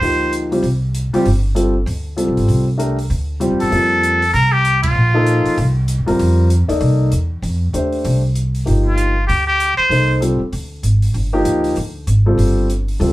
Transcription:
Already playing: C5
0.01 D2 F3 A#3 D#4 G4, open hi-hat
0.33 closed hi-hat
0.51 G3 C4 F4 G4, open hi-hat
0.63 C2, open hi-hat
0.95 closed hi-hat
1.13 G3 C4 F4 G4, muted upright bass stroke, open hi-hat
1.26 G1, open hi-hat
1.55 G3 C4 F4 A4, closed hi-hat
1.86 D2, open hi-hat
2.17 G3 C4 F4 A4, closed hi-hat
2.28 C2
2.37 G#1, open hi-hat
2.48 C2, open hi-hat
2.77 A3 D4 G4 A#4, closed hi-hat
2.99 open hi-hat
3.10 D2, open hi-hat
3.40 G3 C4 F4 G4, closed hi-hat
3.51 F2
3.60 E2 A4, open hi-hat
3.71 F2 G3 A#3 C4 F4, open hi-hat
4.03 closed hi-hat
4.22 open hi-hat
4.33 C2 A#4, open hi-hat
4.52 G4
4.65 closed hi-hat
4.83 F4, kick, ride
4.95 A#1
5.14 F3 A#3 D#4 A4
5.26 closed hi-hat
5.45 muted upright bass stroke, open hi-hat
5.57 C2, open hi-hat
5.88 closed hi-hat
5.98 D#2
6.06 E2 G3 C4 F4 A#4, open hi-hat
6.19 F2, open hi-hat
6.50 closed hi-hat
6.68 D#2 A#3 D#4 A4 D5, open hi-hat
6.80 C2, open hi-hat
7.12 E2, closed hi-hat
7.42 F2, open hi-hat
7.73 D#2 A3 D4 G4 C5, closed hi-hat
7.93 open hi-hat
8.05 C2, open hi-hat
8.36 closed hi-hat
8.55 open hi-hat
8.66 G1 F3 A#3 D#4 G4, open hi-hat
8.86 F4
8.98 closed hi-hat
9.27 D2 G4, open hi-hat
9.47 G4
9.60 closed hi-hat
9.77 C5, muted upright bass stroke
9.89 C2 A#3 D#4 A4 C5, open hi-hat
10.20 G3 C4 F4 A4, closed hi-hat
10.40 muted upright bass stroke
10.52 D2, open hi-hat
10.83 G#1, closed hi-hat
11.02 open hi-hat
11.14 G1, open hi-hat
11.33 F3 A#3 D#4 G4
11.45 D2, closed hi-hat
11.64 open hi-hat
11.76 D2, open hi-hat
12.07 G#1, closed hi-hat
12.26 G3 C4 F4 A4
12.38 G1, open hi-hat
12.70 closed hi-hat
12.88 open hi-hat
12.99 D2 G3 C4 F4 A4, open hi-hat

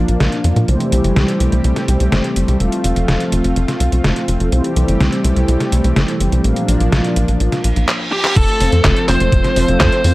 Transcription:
Already playing: A#2 F3 A#3 D4 F4 A#4 F5
0.08 A#1, closed hi-hat
0.20 A#1, snare, closed hi-hat
0.32 closed hi-hat
0.44 F2, closed hi-hat
0.56 A#2, closed hi-hat
0.68 C2 C3 E3 G3 A3 C4 E4 G4 C5, closed hi-hat
0.80 closed hi-hat
0.92 C2, closed hi-hat
1.04 G1, closed hi-hat
1.16 C2, snare, closed hi-hat
1.28 closed hi-hat
1.40 C2, closed hi-hat
1.52 C2, closed hi-hat
1.64 C2, closed hi-hat
1.76 snare, closed hi-hat
1.88 C2, closed hi-hat
2.00 C2, closed hi-hat
2.12 G1, snare, closed hi-hat
2.24 closed hi-hat
2.36 G1, closed hi-hat
2.48 C2, closed hi-hat
2.60 F1 F3 C4 F4 A4 F5, closed hi-hat
2.72 closed hi-hat
2.84 F1, closed hi-hat
2.96 F1, closed hi-hat
3.08 F1, snare, closed hi-hat
3.20 closed hi-hat
3.32 F1, closed hi-hat
3.44 F1, closed hi-hat
3.56 F1, closed hi-hat
3.68 snare, closed hi-hat
3.80 C2, closed hi-hat
3.92 C2, closed hi-hat
4.04 F1, snare, closed hi-hat
4.16 closed hi-hat
4.28 F1, closed hi-hat
4.40 F1, closed hi-hat
4.52 C2 C3 E3 G3 A3 E4 G4 C5, closed hi-hat
4.64 closed hi-hat
4.76 C2, closed hi-hat
4.88 G1, closed hi-hat
5.00 C2, snare, closed hi-hat
5.12 closed hi-hat
5.24 C2, closed hi-hat
5.36 C2, closed hi-hat
5.48 C2, closed hi-hat
5.60 snare, closed hi-hat
5.72 C2, closed hi-hat
5.84 C2, closed hi-hat
5.96 G1, snare, closed hi-hat
6.08 closed hi-hat
6.20 G1, closed hi-hat
6.32 C2, closed hi-hat
6.44 A#1 A#2 F3 A#3 D4 F4 A#4 F5, closed hi-hat
6.56 closed hi-hat
6.68 A#1, closed hi-hat
6.80 A#1, closed hi-hat
6.92 A#1, snare, closed hi-hat
7.04 closed hi-hat
7.16 A#1, closed hi-hat
7.28 A#1, closed hi-hat
7.40 A#1, closed hi-hat, reverse cymbal
7.52 snare, closed hi-hat
7.64 A#1, closed hi-hat
7.76 A#1, closed hi-hat
7.88 clap
8.12 G4
8.24 clap
8.36 F1 F3 A3 C4 A4, kick, closed hi-hat, crash
8.48 closed hi-hat
8.60 F1 A3 C4 F4 C5, open hi-hat
8.72 F2, closed hi-hat
8.84 F1, kick, snare, clap, closed hi-hat
8.96 closed hi-hat
9.08 F1 A3 C4 F4 C5, clap, open hi-hat
9.20 F1, closed hi-hat
9.32 F1, kick, closed hi-hat
9.44 snare, closed hi-hat
9.56 F1 A3 C4 F4 C5, open hi-hat
9.68 F1 A3 C4 F4 A4, closed hi-hat
9.80 F2 C5, kick, snare, clap, closed hi-hat
9.92 closed hi-hat
10.04 F2 A#2 A#3 C4 F4 C5, open hi-hat

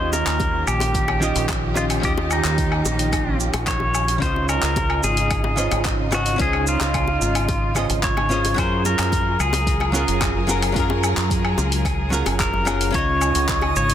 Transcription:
Already playing: D#2 D#3 C#4 F4 G4 C5 D#5
0.13 A#4, high bongo, shaker
0.27 D#2, clap, open hi-hat, low woodblock, shaker
0.40 kick, open hi-hat, high bongo, shaker
0.67 A#1 G4, low woodblock, shaker
0.80 open hi-hat, high bongo, shaker
0.94 kick, open hi-hat, shaker
1.08 high bongo, low woodblock
1.20 D#3 C#4 F4 G4 D#5, shaker
1.36 A#1, open hi-hat, shaker
1.49 kick, clap, open hi-hat, high bongo, low woodblock, shaker
1.74 D#3 C#4 F4 G4 D#5, high bongo, shaker
1.90 open hi-hat, low woodblock, shaker
2.00 D#2 D#3 C#4 F4, kick, open hi-hat, shaker
2.05 G4 D#5
2.18 high bongo
2.31 D#4, low woodblock, shaker
2.44 D#2, clap, open hi-hat, high bongo, shaker
2.58 kick, open hi-hat, shaker
2.72 low woodblock
2.85 A#1, high bongo, shaker
2.99 open hi-hat, shaker
3.12 kick, open hi-hat, high bongo, low woodblock, shaker
3.40 shaker
3.54 A#1, open hi-hat, high bongo, low woodblock, shaker
3.67 C#5, kick, clap, open hi-hat, shaker
3.80 high bongo
3.94 low woodblock, shaker
4.08 open hi-hat, shaker
4.18 C#2 C#3 C#4 D#4 F4 C5 D#5, kick, open hi-hat, shaker
4.23 C5 D#5
4.36 high bongo
4.49 A#4, low woodblock, shaker
4.63 C#2, clap, open hi-hat, shaker
4.76 kick, open hi-hat, high bongo, shaker
4.90 low woodblock
5.03 G#1 G#4, high bongo, shaker
5.17 open hi-hat, shaker
5.31 kick, open hi-hat, low woodblock, shaker
5.44 high bongo
5.56 C#3 C#4 F4 C5 D#5, shaker
5.71 G#1, open hi-hat, high bongo, low woodblock, shaker
5.85 kick, clap, open hi-hat, shaker
6.11 C#3 C#4 F4 F#4 C5 D#5, high bongo, low woodblock, shaker
6.26 open hi-hat, shaker
6.36 C#2 C#3 C#4 F4, kick, open hi-hat, shaker
6.41 G#4 C5 D#5, high bongo
6.53 low woodblock
6.67 F4, shaker
6.80 C#2, clap, open hi-hat, high bongo, shaker
6.94 kick, open hi-hat, low woodblock, shaker
7.08 high bongo
7.21 G#1, shaker
7.35 open hi-hat, low woodblock, shaker
7.48 kick, open hi-hat, high bongo, shaker
7.75 C#3 C#4 F4 C5 D#5, high bongo, low woodblock, shaker
7.90 G#1, open hi-hat, shaker
8.03 C#5, kick, clap, open hi-hat, shaker
8.17 high bongo, low woodblock
8.29 C#3 C#4 F4 C5 D#5, shaker
8.45 open hi-hat, high bongo, shaker
8.54 F#2 F#3 C#4 F4 G#4 A#4, kick, open hi-hat, low woodblock, shaker
8.59 G#4 A#4 C5
8.85 A#4, high bongo, shaker
8.99 F#2, clap, open hi-hat, low woodblock, shaker
9.12 kick, open hi-hat, high bongo, shaker
9.40 C#2 G#4, low woodblock, shaker
9.53 open hi-hat, high bongo, shaker
9.67 kick, open hi-hat, shaker
9.80 high bongo, low woodblock
9.92 F#3 C#4 F4 G#4 A#4, shaker
10.08 F#1, open hi-hat, shaker
10.21 kick, clap, open hi-hat, high bongo, low woodblock, shaker
10.47 F#3 C#4 F4 G#4 A#4, high bongo, shaker
10.62 open hi-hat, low woodblock, shaker
10.72 F#2 F#3 C#4 F4, kick, open hi-hat
10.76 G#4 A#4, shaker
10.90 high bongo
11.04 low woodblock, shaker
11.17 F#2, clap, open hi-hat, high bongo, shaker
11.30 kick, open hi-hat, shaker
11.45 low woodblock
11.58 C#2, high bongo, shaker
11.72 open hi-hat, shaker
11.85 kick, open hi-hat, high bongo, low woodblock, shaker
12.10 F#3 C#4 F4 G#4 A#4, shaker
12.26 F#1, open hi-hat, high bongo, low woodblock, shaker
12.40 A#4, kick, clap, open hi-hat, shaker
12.53 high bongo
12.65 F#3 C#4 F4 G#4 A#4, low woodblock, shaker
12.81 open hi-hat, shaker
12.91 C#2 C#3 C#4 F4 D#5 D#6, kick, open hi-hat, shaker
12.95 C#3 D#4 C#5 D#5
13.21 low woodblock, shaker
13.35 C#2, open hi-hat, shaker
13.49 kick, clap, open hi-hat, shaker
13.62 high bongo, low woodblock
13.76 G#1 C#5, shaker
13.90 open hi-hat, shaker

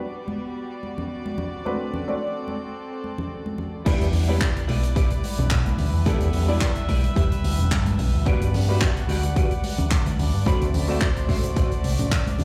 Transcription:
Already playing: G3 B3 F#4 D5
0.28 high conga
0.83 high conga
0.98 low conga
1.26 high conga
1.38 low conga
1.65 A3 C4 D4 F#4 A4 B4, high conga
1.94 low conga
2.08 A3 C4 D4 F#4 D5, high conga
2.48 high conga
3.04 high conga
3.18 low conga
3.46 high conga
3.58 low conga
3.85 G3 B3 D4 E4 G4 B4 D5, muted picked electric bass stroke, kick, closed hi-hat, crash, high conga
4.01 E2, closed hi-hat
4.13 open hi-hat, low conga
4.27 G3 B3 D4 E4 G4 B4 D5, high conga
4.41 kick, clap, closed hi-hat
4.56 closed hi-hat
4.67 B1 E4 G4 B4 D5, open hi-hat, high conga
4.83 closed hi-hat
4.95 E4 G4 B4 D5, kick, closed hi-hat
5.10 closed hi-hat
5.23 muted clean electric guitar stroke, open hi-hat, high conga
5.37 B1, muted clean electric guitar stroke, closed hi-hat, low conga
5.50 B1, kick, clap, closed hi-hat
5.66 closed hi-hat, high conga
5.78 D2, muted clean electric guitar stroke, open hi-hat, low conga
5.94 E2
6.05 G3 B3 D4 E4 G4 A4 B4 D5 E5, muted picked electric bass stroke, kick, closed hi-hat, high conga
6.20 E2, closed hi-hat
6.33 open hi-hat, low conga
6.48 G3 B3 D4 E4 G4 B4 D5, high conga
6.61 kick, clap, closed hi-hat
6.75 closed hi-hat
6.88 B1 E4 G4 B4 D5, kick, open hi-hat, high conga
7.04 closed hi-hat
7.15 E1 E4 G4 B4 E5, kick, closed hi-hat
7.32 closed hi-hat
7.43 D2, muted clean electric guitar stroke, open hi-hat, high conga
7.58 E1, muted clean electric guitar stroke, closed hi-hat, low conga
7.71 G2, kick, clap, closed hi-hat
7.86 closed hi-hat, high conga
7.98 B1, muted clean electric guitar stroke, open hi-hat, low conga
8.14 D2
8.25 G3 B3 D4 F#4 G4 B4 D5 F#5, muted picked electric bass stroke, kick, closed hi-hat, high conga
8.41 G2, closed hi-hat
8.54 open hi-hat, low conga
8.68 G3 B3 D4 F#4 G4 B4 E5, high conga
8.80 kick, clap, closed hi-hat
8.97 closed hi-hat
9.08 D2 F#4 G4 B4 D5, open hi-hat, high conga
9.23 closed hi-hat
9.35 F#4 G4 B4 D5, kick, closed hi-hat
9.51 closed hi-hat
9.63 muted clean electric guitar stroke, open hi-hat, high conga
9.78 D2, muted clean electric guitar stroke, closed hi-hat, low conga
9.91 D2, kick, clap, closed hi-hat
10.06 closed hi-hat, high conga
10.18 D2, muted clean electric guitar stroke, open hi-hat, low conga
10.34 G2
10.46 A3 C4 D4 F#4 A4 C5 D5 B5, muted picked electric bass stroke, kick, closed hi-hat, high conga
10.61 D2, closed hi-hat
10.74 open hi-hat, low conga
10.88 A3 C4 D4 F#4 A4 C5 D5 E5, high conga
11.01 kick, clap, closed hi-hat
11.16 closed hi-hat
11.28 A1 F#4 A4 C5 E5, kick, open hi-hat, high conga
11.43 closed hi-hat
11.55 A1 F#4 A4 C5 D5, kick, closed hi-hat
11.71 closed hi-hat
11.83 C2, muted clean electric guitar stroke, open hi-hat, high conga
11.98 A1, muted clean electric guitar stroke, closed hi-hat, low conga
12.11 kick, clap, closed hi-hat
12.27 closed hi-hat, high conga
12.38 D2, muted clean electric guitar stroke, open hi-hat, low conga

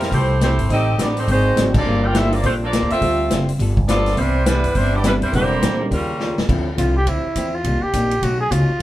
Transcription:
Already playing: C3 E3 G3 A#3 C4 E4 A#4
0.00 snare, open hi-hat
0.11 C2 E3 F3 A3 C4 E4 G4 C5, kick, open hi-hat
0.40 E3 F3 A3 C4 E4 G4 C5, snare, closed hi-hat
0.58 G#1, open hi-hat
0.70 A1 A2 G3 C4 D#4 G4 A4 D#5, kick, open hi-hat
0.98 A1 A2 G3 B3 C4 D4 D#4 G4 D5, snare, closed hi-hat
1.16 D#3 G3 A3 C4 D#4 G4 C5, open hi-hat
1.28 G#1 G#2 D#3 F#3 G#3 C4 D4 D#4 F#4 C5, kick, open hi-hat
1.56 G#1 G#2 F#3 G#3 C4 D4 D#4, snare, closed hi-hat
1.74 F3 A#3 D4 F4 A4 D5, kick, crash
1.85 G1 G3 A3 A#3 D4 F4 A4
2.05 A#3 D4 F4 G4 A#4 D5 G5
2.14 G3 A#3 C4 E4 F4 A4 E5, snare, closed hi-hat
2.32 F3 A#3 D4 F4 A4 D5, open hi-hat
2.43 A#1 G3 A3 A#3 C4 D4 F4 A4 C5, kick, open hi-hat
2.61 F3 A#3 D4 F4 A4 D5
2.72 G3 A#3 F4 A4, snare, closed hi-hat
2.82 D2
2.90 D#2 A3 C4 F4 A4 E5, open hi-hat
3.00 D2 D3 G3 A3 C4 F4 E5, kick, open hi-hat
3.31 F#1 D3 G3 C4 F4, snare, closed hi-hat
3.49 open hi-hat
3.59 G1 G3 B3 F4 A4, kick, open hi-hat
3.77 kick
3.88 F3 G3 B3 D4 F4 A4 D5, snare, closed hi-hat
4.06 snare, open hi-hat
4.17 C2 C3 E3 G3 B3 C4 D4 E4 C5, kick, open hi-hat
4.45 C3 E3 G3 B3 D4 E4 B4, snare, closed hi-hat
4.64 G2, open hi-hat
4.75 G1 C3 E3 G3 B3 C4 D4 E4 C5, kick, open hi-hat
4.94 G3 B3 D4 E4 G4 D5
5.03 C3 E3 G3 B3 C4 D4 E4 B4, snare, closed hi-hat
5.22 D#2 E3 G3 C4 D4 E4 C5, open hi-hat
5.32 E1 D3 E3 G3 A#3 C4 D4 E4 G4 C5 F#5, kick, open hi-hat
5.36 G4
5.62 A#2 E3 A#3 D4 G4, snare, closed hi-hat
5.79 G3 A#3 C#4 D#4 G4
5.91 D#2 C#3 D#3 G3 A#3 C#4 F4 A#4, kick, open hi-hat
6.20 D#3 G3 C#4 F4, snare
6.38 D#2, snare
6.48 D2 D3 F3 A3 C4 D4 E4, kick, crash
6.52 E4
6.76 C2 D3 F3 A3 C4 D4 E4 F4, kick, hi-hat pedal, ride
6.97 G4
7.05 D2 D3 F3 C4 E4, kick, ride
7.36 E2 D3 F3 C4 E4, kick, hi-hat pedal, ride
7.55 F4
7.64 C2 C3 G3 A#3 D#4, kick, ride
7.82 G4, muted upright bass stroke
7.93 A#1 C3 G3 A#3 D#4, kick, hi-hat pedal, ride
8.11 ride
8.22 B1 B2 A3 C#4 D#4 F#4, kick, ride
8.41 G#4
8.50 C#2 B2 A3 C#4 D#4 F4, kick, hi-hat pedal, ride
8.69 muted upright bass stroke
8.79 A#2

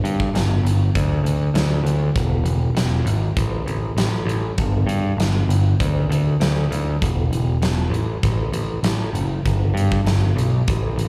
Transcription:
0.04 G2, closed hi-hat
0.20 kick
0.34 G1, snare, closed hi-hat
0.63 G1, closed hi-hat
0.95 D2, kick, closed hi-hat
1.24 D2, closed hi-hat
1.54 D2, snare, closed hi-hat
1.84 D2, closed hi-hat
2.16 E1, kick, closed hi-hat
2.44 E1, closed hi-hat
2.75 E1, snare, closed hi-hat
3.05 G#1, closed hi-hat
3.37 A1, kick, closed hi-hat
3.66 A1, closed hi-hat
3.97 A1, snare, closed hi-hat
4.25 A1, closed hi-hat
4.58 G1, kick, closed hi-hat
4.87 G2, closed hi-hat
5.17 G1, snare, closed hi-hat
5.48 G1, closed hi-hat
5.80 D2, kick, closed hi-hat
6.09 D2, closed hi-hat
6.40 D2, snare, closed hi-hat
6.71 D2, closed hi-hat
7.02 E1, kick, closed hi-hat
7.31 E1, closed hi-hat
7.62 E1, snare, closed hi-hat
7.90 A1, closed hi-hat
8.23 A1, kick, closed hi-hat
8.52 A1, closed hi-hat
8.83 A1, snare, closed hi-hat
9.13 F#1, closed hi-hat
9.46 G1, kick, closed hi-hat
9.74 G2, closed hi-hat
9.92 kick
10.04 G1, snare, closed hi-hat
10.36 B1, closed hi-hat
10.68 A1, kick, closed hi-hat
10.96 A1, closed hi-hat

